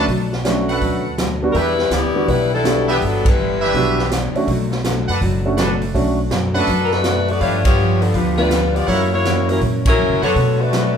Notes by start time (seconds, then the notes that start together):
0.08 B1 B2 F#3 A3 D4, kick, open hi-hat
0.33 snare
0.45 B2 F#3 A3 C#4 D4 F#4, snare, closed hi-hat
0.68 A4 B4 F#5, open hi-hat
0.81 D2 B2 F#3 A3 D4, kick, open hi-hat
1.18 B2 F#3 A3 D4, snare, closed hi-hat
1.42 G3 B3 D4 F#4
1.52 E2 E3 B3 D4 G4 A#4 B4 E5, kick, open hi-hat
1.56 G3 D4 E4 G4 B4
1.79 snare
1.90 D2 E3 B3 D4 E4 G4 D5, snare, closed hi-hat
2.15 G3 B3 D4 F#4
2.28 B1 E3 G3 B3 D4 E4 G4 B4, kick, open hi-hat
2.54 G3 D4 E4 A4
2.64 E3 G3 B3 D4 F#4 G4, snare, closed hi-hat
2.88 E3 B3 D4 G4 B4 E5, open hi-hat
3.01 G1 E3 F#3 B3 D4 G4 A4, kick, open hi-hat
3.25 G3 D4 E4 B4, kick, ride
3.38 E3 B3 D4 G4
3.61 D4 G4 B4 E5
3.74 B1 E3 G3 B3 D4 F#4 G4, kick, open hi-hat
3.99 snare
4.11 E3 B3 D4 G4, snare, closed hi-hat
4.34 A3 C#4 D4 F#4, muted upright bass stroke, open hi-hat
4.48 B1 B2 F#3 A3 D4, kick, open hi-hat
4.71 snare
4.84 B2 F#3 A3 D4, snare, closed hi-hat
5.08 F#2 D4 A4 B4 F#5, open hi-hat
5.21 F#1 B2 F#3 A3 D4, kick, open hi-hat
5.46 A3 C#4 D4 F#4
5.57 B2 F#3 A3 D4 A4 B4 F#5, snare, closed hi-hat
5.82 open hi-hat
5.94 B1 B2 F#3 A3 C#4 D4 F#4, kick, open hi-hat
6.30 F#2 B2 F#3 A3 D4, snare, closed hi-hat
6.55 A3 C#4 D4 F#4 A4 B4 F#5, open hi-hat
6.67 F#2 B2 F#3 A3 D4, kick, open hi-hat
6.84 A#4
6.91 A3 D4 F#4 B4, snare
7.04 B2 F#3 A3 D4, snare, closed hi-hat
7.28 B3 F#4 A4 D5, open hi-hat
7.41 G2 F3 A3 B3 D4 F4 G4 B4 C#5 F5, kick, open hi-hat
7.65 B3 F4 G4 C#5, kick, ride
7.77 G2 F3 B3 D4
8.01 F3 B3 D4 A4, open hi-hat
8.13 D2 G2 F3 B3 D4 G4 B4 F5, kick, open hi-hat
8.37 G3 A3 B3 D4 F4 B4
8.51 G2 F3 B3 D4, snare, closed hi-hat
8.75 B3 F4 G4 D5, open hi-hat
8.86 F#2 E3 A#3 C#4 E4 F#4 A#4 C#5 F#5, kick, open hi-hat
9.12 A#3 E4 F#4 C#5
9.24 F#2 E3 A#3 C#4, snare, closed hi-hat
9.48 F#3 A#3 C#4 E4 F#4 A#4, open hi-hat
9.60 F#2 A#2 E3 A#3 C#4, kick, open hi-hat
9.85 F#3 C#4 E4 A#4, kick, ride
9.97 F#2 E3 A#3 C#4
10.09 C#3
10.21 F#2 B3 D4 F#4 A4 B4 C#5 F#5, open hi-hat
10.34 B2 F#3 A3 D4, kick, open hi-hat
10.59 A3 D4 F#4 B4
10.71 B2 F#3 A3 D4, snare, closed hi-hat